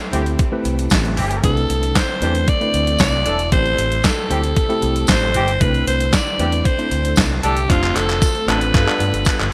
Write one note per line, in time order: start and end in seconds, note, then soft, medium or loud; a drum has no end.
0.00 1.42 C3 medium
0.00 1.42 G3 medium
0.00 5.57 A3 medium
0.00 7.66 E4 medium
0.00 closed hi-hat soft
0.13 0.33 D2 medium
0.13 0.24 E3 medium
0.13 0.39 A3 loud
0.13 0.39 C4 medium
0.13 0.24 C4 medium
0.13 0.39 E4 loud
0.13 0.24 G4 medium
0.13 0.39 G4 medium
0.13 0.39 C5 loud
0.13 closed hi-hat medium
0.26 closed hi-hat soft
0.39 kick loud
0.39 closed hi-hat medium
0.52 1.13 A3 loud
0.52 1.13 C4 loud
0.52 1.13 E4 medium
0.52 1.13 G4 medium
0.52 1.13 B4 loud
0.65 0.86 C2 medium
0.65 closed hi-hat medium
0.79 closed hi-hat medium
0.90 1.19 A1 loud
0.90 kick loud
0.90 snare loud
0.90 clap medium
0.90 closed hi-hat medium
0.90 tambourine medium
1.05 closed hi-hat soft
1.17 1.38 G1 medium
1.17 1.39 E3 loud
1.17 1.39 C4 medium
1.17 1.39 G4 loud
1.17 open hi-hat medium
1.31 closed hi-hat medium
1.43 1.64 C2 loud
1.43 3.50 D3 medium
1.43 1.96 A3 medium
1.43 3.50 C4 medium
1.43 1.96 C4 medium
1.43 1.96 D4 medium
1.43 1.96 E4 medium
1.43 1.98 A4 loud
1.43 1.96 B4 medium
1.43 kick loud
1.43 closed hi-hat loud
1.57 closed hi-hat soft
1.70 1.90 C2 medium
1.70 closed hi-hat medium
1.83 closed hi-hat medium
1.95 2.50 C5 loud
1.95 kick loud
1.95 snare loud
1.95 clap medium
1.95 closed hi-hat loud
1.95 tambourine medium
2.22 2.42 E2 loud
2.22 2.33 E3 medium
2.22 2.48 A3 medium
2.22 2.48 C4 medium
2.22 2.33 D4 medium
2.22 2.48 D4 medium
2.22 2.48 E4 medium
2.22 2.33 G4 medium
2.22 2.48 B4 medium
2.22 closed hi-hat medium
2.35 closed hi-hat soft
2.48 3.00 D5 loud
2.48 kick loud
2.48 closed hi-hat medium
2.61 3.22 A3 medium
2.61 3.22 C4 medium
2.61 3.22 D4 medium
2.61 3.22 E4 medium
2.61 3.22 B4 medium
2.61 closed hi-hat soft
2.74 2.94 D2 medium
2.74 closed hi-hat medium
2.87 closed hi-hat medium
2.99 3.20 C2 loud
2.99 3.49 D5 loud
2.99 kick loud
2.99 snare loud
2.99 clap medium
2.99 closed hi-hat medium
2.99 tambourine loud
3.26 3.47 E1 medium
3.26 3.43 E3 medium
3.26 3.43 D4 medium
3.26 3.43 A4 loud
3.26 closed hi-hat loud
3.39 closed hi-hat medium
3.52 3.73 A1 loud
3.52 5.59 C3 medium
3.52 5.59 G3 medium
3.52 4.04 A3 medium
3.52 4.04 C4 medium
3.52 4.05 E4 medium
3.52 4.05 G4 medium
3.52 4.06 C5 loud
3.52 4.05 C5 medium
3.52 kick loud
3.52 closed hi-hat medium
3.66 closed hi-hat soft
3.79 3.99 A1 medium
3.79 closed hi-hat medium
3.92 closed hi-hat medium
4.04 5.09 A4 loud
4.04 kick loud
4.04 snare loud
4.04 clap medium
4.04 closed hi-hat medium
4.04 tambourine loud
4.30 4.51 D2 medium
4.30 4.41 E3 medium
4.30 4.56 A3 medium
4.30 4.41 C4 medium
4.30 4.57 C4 medium
4.30 4.57 E4 medium
4.30 4.42 G4 medium
4.30 4.57 G4 medium
4.30 4.57 C5 medium
4.30 closed hi-hat medium
4.44 closed hi-hat soft
4.56 kick loud
4.56 closed hi-hat medium
4.69 5.30 A3 loud
4.69 5.30 C4 medium
4.69 5.30 E4 medium
4.69 5.31 G4 medium
4.69 5.31 A4 loud
4.69 closed hi-hat soft
4.82 5.03 C2 medium
4.82 closed hi-hat medium
4.96 closed hi-hat medium
5.07 5.37 A1 loud
5.07 5.63 C5 loud
5.07 kick loud
5.07 snare loud
5.07 clap medium
5.07 closed hi-hat medium
5.07 tambourine medium
5.34 5.55 G1 loud
5.34 5.51 E3 loud
5.34 5.52 C4 medium
5.34 5.51 G4 loud
5.34 closed hi-hat loud
5.48 closed hi-hat medium
5.60 5.81 C2 loud
5.60 8.71 D3 medium
5.60 6.13 A3 medium
5.60 9.53 A3 medium
5.60 6.13 C4 medium
5.60 7.68 C4 medium
5.60 6.13 D4 medium
5.60 6.13 E4 medium
5.60 6.13 B4 medium
5.60 5.87 B4 loud
5.60 kick loud
5.60 closed hi-hat medium
5.74 closed hi-hat soft
5.87 6.07 C2 medium
5.87 6.15 C5 loud
5.87 closed hi-hat loud
6.00 closed hi-hat medium
6.13 6.67 D5 loud
6.13 kick loud
6.13 snare loud
6.13 clap medium
6.13 closed hi-hat medium
6.13 tambourine loud
6.39 6.60 E2 loud
6.39 6.50 E3 medium
6.39 6.65 A3 medium
6.39 6.65 C4 medium
6.39 6.65 D4 medium
6.39 6.50 D4 medium
6.39 6.66 E4 medium
6.39 6.50 G4 loud
6.39 6.66 B4 medium
6.39 closed hi-hat medium
6.52 closed hi-hat medium
6.65 7.17 C5 medium
6.65 kick loud
6.65 closed hi-hat medium
6.78 7.39 A3 medium
6.78 7.39 C4 medium
6.78 7.39 D4 medium
6.78 7.40 E4 medium
6.78 7.40 C5 loud
6.78 closed hi-hat soft
6.91 7.12 D2 medium
6.91 closed hi-hat medium
7.05 closed hi-hat medium
7.16 7.38 C2 loud
7.16 kick loud
7.16 snare loud
7.16 clap medium
7.16 closed hi-hat medium
7.16 tambourine loud
7.43 7.64 C2 medium
7.43 7.60 E3 medium
7.43 7.60 D4 loud
7.43 7.72 G4 medium
7.43 7.60 A4 loud
7.43 closed hi-hat loud
7.57 closed hi-hat medium
7.69 7.90 F1 loud
7.69 8.22 A3 medium
7.69 8.22 C4 medium
7.69 8.73 C4 medium
7.69 8.22 D4 medium
7.69 8.22 F4 medium
7.69 8.73 F4 medium
7.69 7.98 F4 loud
7.69 8.22 C5 medium
7.69 kick loud
7.69 clap medium
7.69 closed hi-hat loud
7.83 clap medium
7.83 closed hi-hat soft
7.96 8.16 F1 medium
7.96 8.50 A4 loud
7.96 clap medium
7.96 closed hi-hat loud
8.09 clap medium
8.09 closed hi-hat medium
8.22 kick loud
8.22 closed hi-hat loud
8.22 tambourine loud
8.35 closed hi-hat soft
8.48 8.68 A1 loud
8.48 8.59 F3 medium
8.48 8.74 A3 medium
8.48 8.74 C4 medium
8.48 8.73 D4 medium
8.48 8.59 D4 medium
8.48 8.73 F4 medium
8.48 8.59 A4 loud
8.48 8.74 B4 medium
8.48 9.53 B4 loud
8.48 clap medium
8.48 closed hi-hat medium
8.61 closed hi-hat medium
8.74 8.84 G2 loud
8.74 9.53 F3 medium
8.74 8.84 G3 medium
8.74 8.85 B3 medium
8.74 9.53 B3 medium
8.74 8.85 D4 medium
8.74 8.85 F4 medium
8.74 9.53 G4 medium
8.74 8.85 A4 loud
8.74 kick loud
8.74 clap medium
8.74 closed hi-hat medium
8.87 9.48 G3 medium
8.87 9.48 B3 medium
8.87 9.48 D4 medium
8.87 9.48 F4 medium
8.87 9.48 A4 medium
8.87 clap medium
9.00 9.10 G2 loud
9.00 closed hi-hat medium
9.13 9.23 G1 loud
9.13 closed hi-hat medium
9.25 kick loud
9.25 clap medium
9.25 closed hi-hat medium
9.25 tambourine loud
9.40 9.50 G1 loud
9.40 clap medium
9.40 closed hi-hat soft